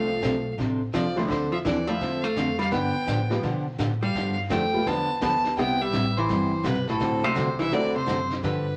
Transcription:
Already playing: C2 F3 A3 C4 D4 F4 F5
0.22 B1 C3 F3 C4 D4 A4, kick, snare, hi-hat pedal
0.58 A1 C3 F3 C4 D4 A4, brush sweep, kick, snare
0.93 C2 C3 F3 C4 D4 A4 D5, kick, snare, hi-hat pedal
1.16 D3 F3 A3 C4 D4 E4 C5, snare
1.28 D2 D3 F3 C4 D4 A4 C5, brush sweep, kick, snare
1.52 F3 E5
1.65 D#2 D3 E3 F3 C4 D4 A4 D5, kick, snare, hi-hat pedal
1.87 F3 A3 C4 D4 E4 E5
2.01 E2 D3 F3 C4 D4 A4, brush sweep, kick, snare
2.24 A3 F5
2.36 F2 D3 F3 C4 D4 A4, kick, snare, hi-hat pedal
2.59 G3 F5, snare
2.72 G2 D3 F3 B3 D4 G4 G5, brush sweep, kick, snare
3.07 A2 D3 F3 B3 D4 G4, kick, snare, hi-hat pedal
3.30 F3 G3 B3 D4 F4, snare
3.43 B2 D3 F3 B3 D4 G4, brush sweep, kick, snare
3.78 A2 D3 F3 B3 D4 G4, kick, snare, hi-hat pedal
4.02 G3 F5
4.15 G2 D3 F3 B3 D4 G4, brush sweep, kick, snare
4.49 F2 D3 F3 A3 B3 D4 G4 G5, kick, snare, hi-hat pedal
4.73 G3 A3 B3 E4 F4
4.86 E2 D3 F3 B3 D4 G4 A5, brush sweep, kick, snare
5.21 D2 D3 F3 B3 D4 G4 A5, kick, snare, hi-hat pedal
5.44 snare
5.57 C2 C3 G3 B3 C4 E4 G4 G5, brush sweep, kick, snare
5.81 G3 E5
5.92 A1 C3 G3 B3 E4 G4, kick, snare, hi-hat pedal
6.17 E3 C5
6.29 G1 C3 G3 B3 E4 G4, brush sweep, kick, snare
6.63 B1 C3 G3 B3 E4 G4 B4, kick, snare, hi-hat pedal
6.88 A2 A4, snare
7.00 D2 D3 A3 C4 F#4 A4, brush sweep, kick, snare
7.23 C3 F#3 A3 C4 D4 F#4 C5
7.35 C2 D3 A3 C4 F#4 A4, kick, snare, hi-hat pedal
7.59 E3 E5, snare
7.71 E2 D3 F#3 A3 C4 D4 E4 F#4 A4 D5, brush sweep, kick, snare
7.96 C3 C5
8.06 F#2 D3 A3 C4 F#4 A4, kick, snare, hi-hat pedal
8.30 snare
8.43 G2 D3 F3 B3 D4 G4 B4, brush sweep, kick, snare

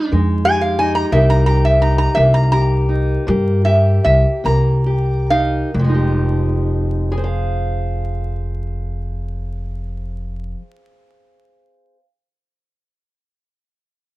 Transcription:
Already playing: G#3 D#4
0.11 F2 F3 G#3
0.45 G4 G#5
0.61 F5
0.79 D#4 G#5
0.95 A#5
1.12 C2 C3 A#3 D#4 G4 E5
1.30 A#5
1.46 G4 A#5
1.65 E5
1.82 D#4 A#5
1.98 A#5
2.15 C2 E3 A#3 E5
2.34 A#5
2.52 G4 A#5
2.89 D#4
3.27 G2 C3 A#3 G4
3.65 G4 E5
4.05 C2 E5
4.44 C2 E3 A#3 A#5
4.86 G4
5.30 D#4 F5
5.74 F1 F2
5.79 F3
5.84 G#3
5.89 D#4
5.95 G4
7.12 G#4
7.18 C5
7.24 F5

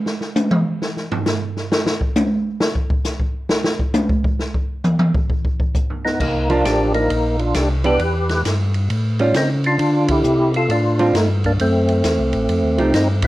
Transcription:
0.06 snare
0.21 snare
0.36 hi-hat pedal, high tom
0.51 mid tom
0.82 snare
0.97 snare
1.11 floor tom
1.26 snare, hi-hat pedal
1.56 snare
1.72 snare
1.86 snare
2.01 kick
2.15 hi-hat pedal, high tom
2.60 snare
2.75 kick
2.90 kick
3.04 snare, hi-hat pedal
3.20 kick
3.49 snare
3.64 snare
3.79 kick
3.94 hi-hat pedal, high tom
4.09 kick
4.24 kick
4.39 snare
4.55 kick
4.84 hi-hat pedal, mid tom
4.99 mid tom
5.15 kick
5.30 kick
5.45 kick
5.60 kick
5.74 kick, hi-hat pedal
5.90 floor tom
6.05 B3 D#4, snare
6.20 C2 A#3 D#4, kick, crash
6.49 F3 A#3 D4 F4, ride
6.64 A1 D4 G4, snare, hi-hat pedal, ride
6.94 A#3 D#4, ride
7.10 A#1, ride
7.39 D4 F4, ride
7.54 C2 D4 G4, snare, hi-hat pedal, ride
7.84 E3 B3 D4 G4 B4, ride
7.99 E2, ride
8.29 snare, ride
8.45 G2, snare, hi-hat pedal, ride
8.74 ride
8.90 A2, ride
9.19 G3 C#4 F4, ride
9.34 C#3 C4 D#4, snare, hi-hat pedal, ride
9.64 D4 F4, ride
9.79 D3, ride
10.09 E4 G4, kick, ride
10.24 C3, hi-hat pedal
10.54 F4 A4, ride
10.68 A2 D4 F4, ride
10.99 D3 G3 C4 F4, ride
11.14 G2 A3 D#4, snare, hi-hat pedal, ride
11.44 A#3 D4, kick, ride
11.59 F#2 A3 C4, ride
11.88 ride
12.03 E2, snare, hi-hat pedal, ride
12.19 C2
12.33 A1, ride
12.49 F2, ride
12.63 D#2
12.78 C2 F3 A3 D#4 G4, ride
12.93 G2 C4 D#4, snare, hi-hat pedal, ride
13.22 kick, ride

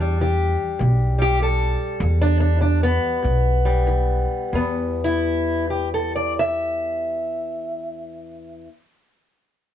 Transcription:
Already playing: E2 D4
0.00 G3
0.21 E3 G4
0.79 B1 B2
1.18 G3 G4
1.40 E3 A4
2.00 E2
2.22 D4
2.40 D4
2.61 E3 D4
2.83 B3
3.23 B1 B2
3.65 G3
3.87 E3
4.53 E2 B3
5.04 E4
5.70 G4
5.94 A4
6.16 D5
6.39 E5

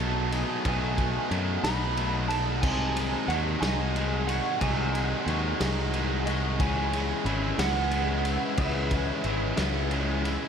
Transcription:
Already playing: B1 B2 F#3 A3 B3 D#4 D#5 F#5 A5 C#6
0.00 B2 F#3 A3 B3 D#4
0.31 F#3 A3 D#4 G#4, ride
0.65 B1 B2 F#3 A3 B3 D#4 G#5 D#6, kick, ride
0.98 F#3 A3 B3 D#4, kick, ride
1.31 F#2 B2 F#3 A3 B3 D#4, ride
1.63 B1 B2 F#3 A3 B3 D#4 B5, snare, ride
1.97 B2 F#3 A3 B3 D#4, ride
2.28 A3 D#4 A5, ride
2.32 F#3
2.61 C2 C3 D#3 F#3 G#3 G#4 F#5 G#5 C6, kick, crash
2.66 D#4
2.96 D#3 G#3 D#4, ride
3.28 D#2 C3 D#3 F#3 G#3 F#4 F#5, ride
3.32 D#4
3.60 C2 D#3 F#3 G#3 D#4 G#5, snare, ride
3.65 C3
3.95 C3 D#3 G#3 D#4, ride
4.27 F#3 G#3 D#4 F#4 F#5, ride
4.60 C2 C3 D#3 F#3 G#3 G#5, kick, ride
4.64 D#4
4.95 D#3 G#3 D#4, ride
5.27 D#2 C3 D#3 F#3 G#3 D#4 F#4, ride
5.60 C2 C3 D#3 F#3 G#3 D#4, snare, ride
5.93 C3 D#3 G#3 D#4, ride
6.26 F#3 G#3 D#4 F#4 D#5, ride
6.59 C#2 C#3 E3 G#3 C#4 B4 E5 G#5 C#6, kick, ride
6.93 E3 G#3 C#4, ride
7.25 G#1 C#3 E3 G#3 C#4 E4, ride
7.58 C#2 C#3 E3 G#3 B3 C#4 F#5, snare, ride
7.91 C#3 E3 G#3 C#4, ride
8.25 E3 G#3 C#4 E4, ride
8.57 C#2 C#3 E3 G#3 C#4 E5, kick, ride
8.91 E3 G#3 C#4, kick, ride
9.24 G#1 C#3 E3 G#3 C#4 E4, ride
9.57 C#2 C#3 E3 G#3 B3 C#4, snare, ride
9.91 C#3 E3 G#3 C#4, ride
10.23 E3 G#3 C#4 E4, ride

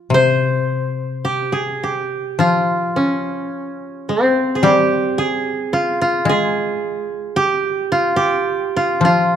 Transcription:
Already playing: F3 F4
0.10 C3
0.14 C5
1.25 G4
1.52 G#4
1.83 G4
2.39 F3 F4
2.96 C#4
4.09 C4
4.55 G#4
4.63 G3 G4
5.18 G#4
5.73 F4
6.01 F4
6.25 G#3
6.29 G#4
7.36 G4
7.92 F4
8.16 G4
8.76 F4
9.01 F3
9.05 F4

